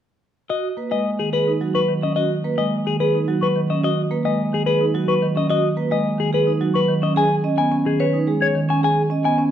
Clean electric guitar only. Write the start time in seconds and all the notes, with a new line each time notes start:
0.50 D#5
0.92 D#5
1.19 G#4
1.33 B4
1.75 B4
2.03 D#5
2.16 D#5
2.58 D#5
2.87 G#4
3.00 B4
3.43 B4
3.70 D#5
3.84 D#5
4.25 D#5
4.54 G#4
4.66 B4
5.08 B4
5.37 D#5
5.51 D#5
5.92 D#5
6.20 G#4
6.34 B4
6.75 B4
7.03 D#5
7.17 G#5
7.58 G#5
7.86 G#4
8.00 C#5
8.42 C#5
8.70 G#5
8.84 G#5
9.25 G#5